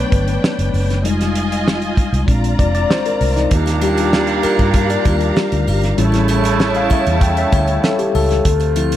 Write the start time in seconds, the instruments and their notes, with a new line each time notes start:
Already playing: tine electric piano F#3 A3 B3 B4 C#5 D5, string section D4 B4 G5
0.12 fingered electric bass G1, kick, closed hi-hat
0.28 closed hi-hat
0.44 snare
0.58 fingered electric bass F#1, closed hi-hat
0.74 fingered electric bass F#1, open hi-hat
0.90 snare, closed hi-hat
1.04 fingered electric bass F1, tine electric piano G3 G#3 D#4, string section F4 D#5 G#5, closed hi-hat
1.21 snare, closed hi-hat
1.35 closed hi-hat
1.52 closed hi-hat
1.68 snare
1.82 closed hi-hat
1.97 muted fingered electric bass stroke, kick, closed hi-hat
2.13 fingered electric bass C2, closed hi-hat
2.27 fingered electric bass A#1, tine electric piano G#3 C4 D4, string section F4 D5 A#5, kick, closed hi-hat
2.44 closed hi-hat
2.59 fingered electric bass F1, tine electric piano D5, kick, closed hi-hat
2.75 tine electric piano D5, closed hi-hat
2.90 tine electric piano C5, snare
3.06 tine electric piano A#4, closed hi-hat
3.21 fingered electric bass C2, open hi-hat
3.36 tine electric piano D#4, snare, closed hi-hat
3.51 fingered electric bass D#2, horn section A#2 G3 D4, string section G4 F5 A#5, kick, closed hi-hat, muted triangle
3.66 snare, closed hi-hat, muted triangle
3.81 tine electric piano G3 D4 F4 G4, closed hi-hat, triangle
3.98 closed hi-hat, muted triangle
4.13 snare, muted triangle
4.27 closed hi-hat, muted triangle
4.43 tine electric piano A#4, muted fingered electric bass stroke, closed hi-hat, triangle
4.59 fingered electric bass G2, kick, closed hi-hat, muted triangle
4.74 kick, closed hi-hat, muted triangle
4.90 tine electric piano D5, closed hi-hat, muted triangle
5.05 fingered electric bass D#2, tine electric piano G3 D4 F4, kick, closed hi-hat, triangle
5.20 closed hi-hat, muted triangle
5.36 snare, muted triangle
5.52 fingered electric bass D2, closed hi-hat, muted triangle
5.67 fingered electric bass G1, open hi-hat, triangle
5.82 snare, closed hi-hat, muted triangle
5.97 fingered electric bass A1, horn section C#3 A3 E4, tine electric piano G3 C#4 E4, string section E4 C#5 A5, closed hi-hat, muted triangle
6.12 snare, closed hi-hat, muted triangle
6.28 closed hi-hat, triangle
6.44 closed hi-hat, muted triangle
6.60 tine electric piano C#5, snare, muted triangle
6.74 tine electric piano F5, closed hi-hat, muted triangle
6.90 tine electric piano E5, muted fingered electric bass stroke, kick, closed hi-hat, triangle
7.06 fingered electric bass E2, closed hi-hat, muted triangle
7.21 tine electric piano G5, kick, closed hi-hat, muted triangle
7.37 tine electric piano E5, closed hi-hat, muted triangle
7.52 fingered electric bass D2, tine electric piano C#5, kick, closed hi-hat, triangle
7.67 closed hi-hat, muted triangle
7.84 tine electric piano A4, snare, muted triangle
7.99 tine electric piano G4, closed hi-hat, muted triangle
8.15 fingered electric bass C#2, tine electric piano A4, open hi-hat, triangle
8.29 snare, closed hi-hat, muted triangle
8.45 fingered electric bass D2, horn section C3 A3 F4, kick, closed hi-hat, muted triangle
8.60 closed hi-hat, muted triangle
8.76 tine electric piano F3 C4 E4, closed hi-hat, triangle
8.92 closed hi-hat, muted triangle